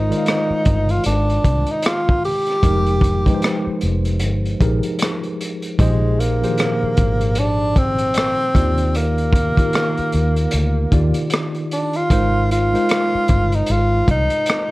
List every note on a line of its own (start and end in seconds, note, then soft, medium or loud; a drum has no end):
0.00 0.11 G#1 medium
0.00 0.09 G#3 medium
0.00 0.92 D#4 medium
0.00 2.63 D#4 medium
0.00 0.10 F4 medium
0.00 0.11 A#4 medium
0.00 2.64 C5 loud
0.09 1.42 D#3 medium
0.09 1.42 G#3 medium
0.09 1.43 F4 medium
0.09 1.43 A#4 medium
0.09 0.16 D5 medium
0.09 closed hi-hat soft
0.18 1.46 F5 medium
0.26 cross-stick loud
0.26 closed hi-hat medium
0.50 muted fingered electric bass stroke soft
0.65 0.98 G1 medium
0.65 kick medium
0.65 closed hi-hat medium
0.89 1.06 F4 medium
0.89 closed hi-hat soft
1.04 1.37 G#1 medium
1.04 1.73 D4 medium
1.04 cross-stick soft
1.04 closed hi-hat medium
1.29 closed hi-hat soft
1.45 1.64 C2 medium
1.45 kick medium
1.45 closed hi-hat medium
1.67 closed hi-hat soft
1.71 1.88 D#4 medium
1.82 2.25 F4 medium
1.82 cross-stick loud
1.82 closed hi-hat medium
2.09 kick medium
2.25 3.78 G4 loud
2.25 open hi-hat soft
2.47 cross-stick soft
2.47 closed hi-hat soft
2.63 3.27 F1 medium
2.63 3.16 F3 medium
2.63 3.17 G#3 medium
2.63 3.16 D#4 medium
2.63 3.17 G4 medium
2.63 3.17 A#4 medium
2.63 kick medium
2.63 closed hi-hat medium
2.86 closed hi-hat soft
3.01 kick medium
3.01 closed hi-hat medium
3.26 4.45 F3 medium
3.26 4.45 G#3 medium
3.26 4.45 D#4 medium
3.26 4.45 G4 medium
3.26 3.32 B4 medium
3.26 kick medium
3.26 closed hi-hat soft
3.34 4.49 C5 medium
3.42 cross-stick loud
3.42 closed hi-hat medium
3.67 muted fingered electric bass stroke soft
3.81 4.23 F1 medium
3.81 closed hi-hat medium
4.05 closed hi-hat soft
4.19 4.54 G1 medium
4.19 closed hi-hat medium
4.46 closed hi-hat soft
4.60 4.80 A#1 medium
4.60 5.65 F3 medium
4.60 5.65 D#4 medium
4.60 5.66 G4 medium
4.60 5.66 G#4 medium
4.60 5.66 A#4 medium
4.60 kick medium
4.60 closed hi-hat medium
4.83 closed hi-hat soft
4.99 cross-stick loud
4.99 closed hi-hat medium
5.23 closed hi-hat soft
5.41 closed hi-hat medium
5.62 closed hi-hat soft
5.79 6.43 A#1 medium
5.79 6.32 A#2 medium
5.79 6.32 F3 medium
5.79 6.21 G#3 medium
5.79 6.32 D#4 medium
5.79 6.33 G4 medium
5.79 6.33 G#4 medium
5.79 6.33 C5 loud
5.79 kick loud
5.79 closed hi-hat medium
6.20 7.41 A#3 medium
6.20 closed hi-hat medium
6.42 7.74 A#2 medium
6.42 7.74 F3 medium
6.42 6.47 D4 soft
6.42 7.75 G4 medium
6.42 7.75 G#4 medium
6.42 7.75 C5 medium
6.42 closed hi-hat soft
6.49 7.78 D#3 medium
6.58 cross-stick loud
6.58 closed hi-hat medium
6.83 muted fingered electric bass stroke soft
6.97 8.36 G#1 medium
6.97 kick medium
6.97 closed hi-hat medium
7.21 closed hi-hat soft
7.35 7.80 D4 medium
7.35 closed hi-hat medium
7.76 8.98 C4 loud
7.76 kick medium
7.76 closed hi-hat medium
7.98 closed hi-hat medium
8.14 cross-stick loud
8.14 closed hi-hat medium
8.55 9.50 D#2 loud
8.55 9.41 D#3 medium
8.55 9.41 D#4 medium
8.55 9.42 F4 medium
8.55 9.42 G4 medium
8.55 9.42 D5 medium
8.55 kick loud
8.55 closed hi-hat medium
8.78 closed hi-hat soft
8.95 11.32 A#3 medium
8.95 closed hi-hat medium
9.18 closed hi-hat soft
9.33 kick medium
9.33 closed hi-hat medium
9.57 10.76 D#3 medium
9.57 10.76 D#4 medium
9.57 10.76 F4 medium
9.57 10.77 G4 medium
9.57 10.77 A#4 medium
9.57 kick medium
9.57 closed hi-hat soft
9.73 cross-stick loud
9.73 closed hi-hat medium
9.97 muted fingered electric bass stroke soft
9.97 closed hi-hat soft
10.12 10.45 D#2 medium
10.12 closed hi-hat medium
10.36 closed hi-hat soft
10.51 10.85 D2 medium
10.51 closed hi-hat medium
10.92 11.11 D#2 medium
10.92 11.97 D#3 medium
10.92 11.97 D#4 medium
10.92 11.97 F4 medium
10.92 11.98 G4 medium
10.92 11.98 D5 medium
10.92 kick medium
10.92 closed hi-hat medium
11.14 closed hi-hat soft
11.30 cross-stick loud
11.30 closed hi-hat medium
11.55 closed hi-hat soft
11.71 11.98 D4 medium
11.71 closed hi-hat medium
11.93 12.51 F4 loud
11.93 closed hi-hat soft
12.10 12.74 G#1 loud
12.10 12.63 G#3 medium
12.10 12.64 D#4 medium
12.10 12.64 F4 medium
12.10 12.64 A#4 medium
12.10 12.65 C5 loud
12.10 kick medium
12.10 closed hi-hat medium
12.51 13.57 F4 loud
12.51 closed hi-hat medium
12.73 14.06 G#3 medium
12.73 14.06 D#4 medium
12.73 14.06 F4 medium
12.73 14.07 A#4 medium
12.73 14.07 C5 medium
12.73 closed hi-hat soft
12.89 cross-stick loud
12.89 closed hi-hat medium
13.15 muted fingered electric bass stroke soft
13.28 13.61 G1 medium
13.28 kick medium
13.28 closed hi-hat medium
13.52 13.73 D#4 medium
13.52 closed hi-hat soft
13.66 14.01 G#1 medium
13.66 closed hi-hat medium
13.71 14.09 F4 loud
14.08 14.27 C2 medium
14.08 14.71 D#4 loud
14.08 kick medium
14.08 closed hi-hat medium
14.30 closed hi-hat soft
14.46 cross-stick loud
14.46 closed hi-hat medium